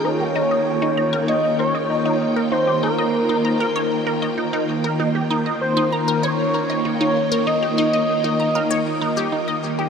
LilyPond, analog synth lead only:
\new Staff \with { instrumentName = "Analog synth lead" } { \time 4/4 \key ees \mixolydian \tempo 4 = 97 des''2 ees''8 des''4 r8 | c''8 bes'2. r8 | r4 c''8 bes'8 des''2 | ees''8 ees''2. r8 | }